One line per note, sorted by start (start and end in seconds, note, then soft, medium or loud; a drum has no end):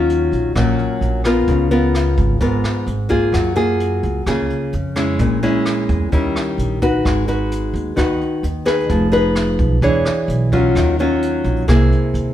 0.00 0.28 D#2 medium
0.00 0.53 D#3 soft
0.00 0.52 F#3 soft
0.00 0.52 C#4 medium
0.00 0.52 F4 medium
0.09 closed hi-hat soft
0.32 0.54 A#1 medium
0.32 closed hi-hat soft
0.55 0.77 A#1 medium
0.55 1.46 A#2 medium
0.55 1.21 F#3 medium
0.55 1.22 C#4 soft
0.55 1.22 F4 medium
0.55 kick soft
0.55 cross-stick soft
0.55 closed hi-hat soft
0.79 closed hi-hat soft
1.01 1.45 A#1 medium
1.01 closed hi-hat soft
1.24 1.68 B3 medium
1.24 1.68 F4 medium
1.24 1.68 A#4 medium
1.24 cross-stick soft
1.24 closed hi-hat soft
1.47 2.14 C#2 medium
1.47 2.39 C#3 soft
1.47 kick soft
1.47 closed hi-hat soft
1.71 2.37 B3 medium
1.71 2.37 F4 medium
1.71 2.38 A#4 medium
1.71 closed hi-hat soft
1.95 cross-stick soft
1.95 closed hi-hat soft
2.17 2.39 G#1 medium
2.17 kick soft
2.17 closed hi-hat soft
2.40 2.63 G#1 medium
2.40 3.31 G#2 medium
2.40 2.87 B3 medium
2.40 2.87 F4 medium
2.40 2.88 A#4 medium
2.40 kick soft
2.40 closed hi-hat soft
2.64 cross-stick medium
2.64 closed hi-hat soft
2.87 3.30 G#1 medium
2.87 closed hi-hat soft
3.09 3.53 A#3 medium
3.09 3.53 F4 medium
3.09 3.53 G#4 medium
3.09 kick soft
3.09 closed hi-hat soft
3.32 3.99 F#2 medium
3.32 4.23 F#3 soft
3.32 kick soft
3.32 cross-stick medium
3.32 closed hi-hat soft
3.56 4.22 A#3 medium
3.56 4.22 F4 medium
3.56 4.23 G#4 medium
3.56 closed hi-hat soft
3.80 closed hi-hat soft
4.03 4.25 C#2 medium
4.03 closed hi-hat soft
4.26 4.48 C#2 medium
4.26 5.17 C#3 medium
4.26 4.73 A#3 medium
4.26 4.73 F4 soft
4.26 4.73 G#4 medium
4.26 kick soft
4.26 cross-stick soft
4.26 closed hi-hat soft
4.50 closed hi-hat soft
4.73 5.16 F2 medium
4.73 closed hi-hat soft
4.96 5.39 G#3 medium
4.96 5.39 C#4 medium
4.96 5.39 E4 medium
4.96 cross-stick soft
4.96 closed hi-hat soft
5.19 5.85 A#1 medium
5.19 6.10 A#2 soft
5.19 kick soft
5.19 closed hi-hat soft
5.43 6.08 G#3 medium
5.43 6.09 C#4 medium
5.43 6.09 E4 medium
5.43 closed hi-hat soft
5.66 cross-stick medium
5.66 closed hi-hat soft
5.89 6.11 E2 medium
5.89 kick medium
5.89 closed hi-hat soft
6.12 6.34 D#2 medium
6.12 7.02 D#3 medium
6.12 6.78 G3 soft
6.12 6.78 C#4 soft
6.12 6.78 E4 medium
6.12 kick soft
6.12 closed hi-hat soft
6.36 cross-stick soft
6.36 closed hi-hat soft
6.58 7.01 A#1 medium
6.58 closed hi-hat soft
6.82 7.24 D#4 medium
6.82 7.25 F#4 medium
6.82 7.25 B4 medium
6.82 kick soft
6.82 closed hi-hat soft
7.05 7.71 G#1 medium
7.05 7.95 G#3 soft
7.05 kick medium
7.05 cross-stick medium
7.05 closed hi-hat soft
7.28 7.94 D#4 medium
7.28 7.94 F#4 medium
7.28 7.94 B4 medium
7.28 closed hi-hat soft
7.51 closed hi-hat soft
7.73 7.95 D#2 medium
7.73 closed hi-hat soft
7.96 8.19 D#2 medium
7.96 8.87 D#3 soft
7.96 8.43 D#4 soft
7.96 8.43 F#4 medium
7.96 8.44 B4 medium
7.96 kick soft
7.96 cross-stick soft
7.96 closed hi-hat soft
8.21 closed hi-hat soft
8.43 8.87 D#2 medium
8.43 closed hi-hat soft
8.65 9.09 D#4 medium
8.65 9.09 G#4 medium
8.65 9.09 B4 medium
8.65 cross-stick soft
8.65 closed hi-hat soft
8.89 9.55 F1 medium
8.89 9.80 F3 soft
8.89 kick medium
8.89 closed hi-hat soft
9.12 9.78 D#4 medium
9.12 9.79 G#4 medium
9.12 9.79 B4 medium
9.12 closed hi-hat soft
9.35 cross-stick medium
9.35 closed hi-hat soft
9.59 9.81 B1 medium
9.59 kick medium
9.59 closed hi-hat soft
9.82 10.04 E1 medium
9.82 10.73 E3 medium
9.82 10.49 D4 soft
9.82 10.49 G#4 medium
9.82 10.49 C#5 medium
9.82 kick soft
9.82 closed hi-hat soft
10.05 cross-stick medium
10.05 closed hi-hat soft
10.28 10.72 B1 medium
10.28 closed hi-hat soft
10.52 10.95 F#3 medium
10.52 10.95 C#4 medium
10.52 10.96 F4 medium
10.52 kick soft
10.52 closed hi-hat soft
10.75 11.41 D#2 medium
10.75 11.66 D#3 soft
10.75 kick soft
10.75 cross-stick medium
10.75 closed hi-hat soft
10.99 11.65 F#3 medium
10.99 11.65 C#4 medium
10.99 11.65 F4 medium
10.99 closed hi-hat soft
11.22 closed hi-hat soft
11.44 11.66 A#1 medium
11.44 closed hi-hat soft
11.68 11.90 C2 medium
11.68 12.34 C3 medium
11.68 12.34 A#3 medium
11.68 12.34 E4 medium
11.68 12.34 G#4 medium
11.68 kick medium
11.68 cross-stick medium
11.68 closed hi-hat soft
11.92 closed hi-hat soft
12.14 12.34 D#2 medium
12.14 closed hi-hat soft